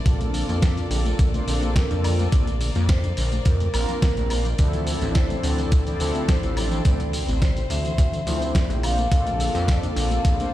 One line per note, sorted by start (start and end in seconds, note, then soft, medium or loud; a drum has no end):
0.00 4.55 A#3 medium
0.00 2.02 A4 medium
0.00 6.82 D5 medium
0.04 0.44 A#1 loud
0.04 0.13 D3 medium
0.04 1.30 A#3 medium
0.04 1.30 C4 medium
0.04 1.30 D4 medium
0.04 1.31 F4 medium
0.04 1.31 A4 loud
0.04 kick loud
0.04 closed hi-hat medium
0.04 tambourine soft
0.21 0.31 A3 loud
0.21 closed hi-hat soft
0.21 tambourine soft
0.34 0.42 D3 medium
0.34 open hi-hat loud
0.34 tambourine medium
0.49 0.86 F2 loud
0.49 0.59 A#3 medium
0.49 closed hi-hat soft
0.49 tambourine soft
0.62 0.67 D3 medium
0.62 kick loud
0.62 snare loud
0.62 closed hi-hat medium
0.62 tambourine soft
0.77 0.81 D4 medium
0.77 closed hi-hat soft
0.77 tambourine soft
0.91 1.14 A#1 medium
0.91 1.02 D3 medium
0.91 open hi-hat loud
0.91 tambourine medium
1.05 1.10 A3 medium
1.05 closed hi-hat soft
1.05 tambourine soft
1.19 1.42 A#1 loud
1.19 1.26 D3 medium
1.19 kick loud
1.19 closed hi-hat medium
1.19 tambourine soft
1.34 1.44 A3 loud
1.34 1.44 A#3 loud
1.34 1.44 C4 medium
1.34 1.44 D4 medium
1.34 1.44 F4 medium
1.34 1.45 C5 loud
1.34 closed hi-hat soft
1.34 tambourine soft
1.46 1.86 A#1 medium
1.46 1.55 D3 medium
1.46 2.29 A#3 loud
1.46 2.29 C4 loud
1.46 2.29 D4 medium
1.46 2.29 F4 medium
1.46 2.30 A4 loud
1.46 open hi-hat loud
1.46 tambourine medium
1.62 1.72 A#3 medium
1.62 closed hi-hat soft
1.62 tambourine soft
1.76 1.80 D3 medium
1.76 2.05 A#4 medium
1.76 kick loud
1.76 snare loud
1.76 closed hi-hat medium
1.76 tambourine soft
1.90 2.28 F2 medium
1.90 1.95 D4 medium
1.90 closed hi-hat soft
1.90 tambourine soft
2.04 2.15 D3 medium
2.04 4.57 A#4 medium
2.04 2.57 D5 loud
2.04 open hi-hat loud
2.04 tambourine medium
2.04 high woodblock medium
2.19 2.23 A3 medium
2.19 closed hi-hat soft
2.19 tambourine soft
2.32 2.71 A#1 loud
2.32 2.40 D3 medium
2.32 2.47 A#3 medium
2.32 2.47 C4 medium
2.32 2.47 D4 medium
2.32 2.47 F4 medium
2.32 2.47 A4 medium
2.32 kick loud
2.32 closed hi-hat medium
2.32 tambourine soft
2.47 2.57 A3 medium
2.47 closed hi-hat soft
2.47 tambourine soft
2.61 2.68 D3 medium
2.61 open hi-hat loud
2.61 tambourine medium
2.75 3.13 F2 loud
2.75 2.86 A#3 medium
2.75 closed hi-hat soft
2.75 tambourine soft
2.89 2.94 D3 medium
2.89 3.47 C5 medium
2.89 kick loud
2.89 snare loud
2.89 closed hi-hat medium
2.89 tambourine soft
3.04 3.08 D4 medium
3.04 closed hi-hat soft
3.04 tambourine soft
3.17 3.40 A#1 medium
3.17 3.28 D3 medium
3.17 open hi-hat loud
3.17 tambourine medium
3.32 3.36 A3 medium
3.32 closed hi-hat soft
3.32 tambourine soft
3.45 3.69 F2 medium
3.45 3.53 D3 medium
3.45 4.01 A#4 medium
3.45 kick loud
3.45 closed hi-hat medium
3.45 tambourine soft
3.60 3.71 A3 loud
3.60 closed hi-hat soft
3.60 tambourine soft
3.74 3.86 A#1 medium
3.74 4.27 A#3 medium
3.74 3.81 A#3 medium
3.74 4.27 C4 medium
3.74 4.27 D4 medium
3.74 4.28 F4 medium
3.74 4.28 A#4 loud
3.74 open hi-hat loud
3.74 tambourine medium
3.74 high woodblock medium
3.89 3.99 F3 medium
3.89 closed hi-hat soft
3.89 tambourine soft
4.02 4.07 A3 medium
4.02 4.32 A#4 medium
4.02 kick loud
4.02 snare loud
4.02 closed hi-hat medium
4.02 tambourine soft
4.17 4.54 A#1 medium
4.17 4.24 A3 loud
4.17 closed hi-hat soft
4.17 tambourine soft
4.30 4.45 A#3 medium
4.30 4.38 A#3 medium
4.30 4.45 C4 medium
4.30 4.45 D4 medium
4.30 4.45 F4 medium
4.30 4.45 C5 medium
4.30 4.58 D5 loud
4.30 open hi-hat loud
4.30 tambourine medium
4.30 high woodblock medium
4.45 4.49 F3 medium
4.45 closed hi-hat soft
4.45 tambourine soft
4.58 4.97 D2 loud
4.58 4.66 C3 medium
4.58 5.83 F3 medium
4.58 5.83 C4 medium
4.58 8.80 C4 medium
4.58 5.84 D4 medium
4.58 8.80 E4 medium
4.58 5.84 E4 medium
4.58 5.84 A4 loud
4.58 5.17 D5 loud
4.58 kick loud
4.58 closed hi-hat medium
4.58 tambourine soft
4.73 4.84 E3 loud
4.73 closed hi-hat soft
4.73 tambourine soft
4.87 4.94 C3 medium
4.87 open hi-hat loud
4.87 tambourine medium
5.02 5.39 A1 loud
5.02 5.12 C4 medium
5.02 closed hi-hat soft
5.02 tambourine soft
5.15 5.45 C5 loud
5.15 kick loud
5.15 snare loud
5.15 closed hi-hat medium
5.15 tambourine soft
5.30 5.34 A3 medium
5.30 closed hi-hat soft
5.30 tambourine soft
5.43 5.66 D2 medium
5.43 5.55 C3 medium
5.43 6.32 A4 medium
5.43 open hi-hat loud
5.43 tambourine medium
5.58 5.63 E3 medium
5.58 closed hi-hat soft
5.58 tambourine soft
5.72 5.95 D2 loud
5.72 5.79 C3 medium
5.72 kick loud
5.72 closed hi-hat medium
5.72 tambourine soft
5.86 5.97 E3 loud
5.86 5.97 F3 loud
5.86 5.97 C4 medium
5.86 5.97 D4 medium
5.86 5.97 E4 medium
5.86 5.97 D5 loud
5.86 closed hi-hat soft
5.86 tambourine soft
5.99 6.39 D2 medium
5.99 6.08 C3 medium
5.99 6.81 F3 loud
5.99 6.82 C4 medium
5.99 6.82 D4 medium
5.99 6.82 E4 medium
5.99 6.82 A4 loud
5.99 open hi-hat loud
5.99 tambourine medium
6.15 6.25 C4 medium
6.15 closed hi-hat soft
6.15 tambourine soft
6.28 6.33 C3 medium
6.28 6.58 C5 loud
6.28 kick loud
6.28 snare loud
6.28 closed hi-hat medium
6.28 tambourine soft
6.43 6.81 A1 medium
6.43 6.47 A3 medium
6.43 closed hi-hat soft
6.43 tambourine soft
6.57 6.68 C3 medium
6.57 6.85 D5 loud
6.57 open hi-hat loud
6.57 tambourine medium
6.57 high woodblock medium
6.72 6.76 E3 medium
6.72 closed hi-hat soft
6.72 tambourine soft
6.84 7.24 D2 loud
6.84 6.93 C3 medium
6.84 6.99 F3 medium
6.84 6.99 C4 medium
6.84 7.00 D4 medium
6.84 7.00 E4 medium
6.84 7.00 A4 medium
6.84 8.81 C5 medium
6.84 7.38 D5 loud
6.84 kick loud
6.84 closed hi-hat medium
6.84 tambourine soft
7.00 7.10 E3 loud
7.00 closed hi-hat soft
7.00 tambourine soft
7.13 7.21 C3 medium
7.13 open hi-hat loud
7.13 tambourine medium
7.28 7.66 A1 loud
7.28 7.38 C4 medium
7.28 closed hi-hat soft
7.28 tambourine soft
7.41 7.46 C3 medium
7.41 7.71 C5 loud
7.41 kick loud
7.41 snare loud
7.41 closed hi-hat medium
7.41 tambourine soft
7.57 7.61 A3 medium
7.57 closed hi-hat soft
7.57 tambourine soft
7.70 7.93 D2 medium
7.70 7.81 C3 medium
7.70 8.51 E5 loud
7.70 open hi-hat medium
7.70 tambourine medium
7.85 7.89 E3 medium
7.85 closed hi-hat soft
7.85 tambourine soft
7.98 8.21 D2 loud
7.98 8.06 C3 medium
7.98 kick loud
7.98 closed hi-hat medium
7.98 tambourine soft
8.13 8.23 E3 loud
8.13 closed hi-hat soft
8.13 tambourine soft
8.26 8.65 D2 medium
8.26 8.34 C3 medium
8.26 8.80 F3 medium
8.26 8.80 C4 medium
8.26 8.80 D4 medium
8.26 8.80 E4 medium
8.26 8.80 C5 loud
8.26 open hi-hat loud
8.26 tambourine medium
8.41 8.51 C4 medium
8.41 closed hi-hat soft
8.41 tambourine soft
8.55 8.81 D5 loud
8.55 kick loud
8.55 snare loud
8.55 closed hi-hat medium
8.55 tambourine soft
8.69 9.07 A#1 medium
8.69 8.74 A3 medium
8.69 closed hi-hat soft
8.69 tambourine soft
8.83 8.94 D3 medium
8.83 8.98 A#3 medium
8.83 10.54 A#3 medium
8.83 8.98 C4 medium
8.83 8.98 D4 medium
8.83 8.98 F4 medium
8.83 10.54 A4 medium
8.83 8.98 C5 medium
8.83 10.54 D5 medium
8.83 9.11 F5 loud
8.83 open hi-hat loud
8.83 tambourine medium
8.83 high woodblock medium
8.98 9.02 A3 medium
8.98 closed hi-hat soft
8.98 tambourine soft
9.11 9.50 A#1 loud
9.11 9.19 D3 medium
9.11 10.36 A#3 medium
9.11 10.36 C4 medium
9.11 10.36 D4 medium
9.11 10.36 F4 medium
9.11 10.37 A4 loud
9.11 9.70 F5 loud
9.11 kick loud
9.11 closed hi-hat medium
9.11 tambourine soft
9.26 9.36 A3 loud
9.26 closed hi-hat soft
9.26 tambourine soft
9.39 9.47 D3 medium
9.39 open hi-hat loud
9.39 tambourine medium
9.54 9.92 F2 loud
9.54 9.65 F4 medium
9.54 closed hi-hat soft
9.54 tambourine soft
9.68 9.72 D3 medium
9.68 9.98 D5 loud
9.68 kick loud
9.68 snare loud
9.68 closed hi-hat medium
9.68 tambourine soft
9.83 9.87 D4 medium
9.83 closed hi-hat soft
9.83 tambourine soft
9.96 10.19 A#1 medium
9.96 10.07 D3 medium
9.96 10.23 F5 loud
9.96 open hi-hat medium
9.96 tambourine medium
10.11 10.15 A3 medium
10.11 closed hi-hat soft
10.11 tambourine soft
10.25 10.48 A#1 loud
10.25 10.32 D3 medium
10.25 10.54 F5 loud
10.25 kick loud
10.25 closed hi-hat medium
10.25 tambourine soft
10.39 10.49 A3 loud
10.39 10.50 A#3 loud
10.39 10.50 C4 medium
10.39 10.50 D4 medium
10.39 10.50 F4 medium
10.39 10.50 C5 loud
10.39 closed hi-hat soft
10.39 tambourine soft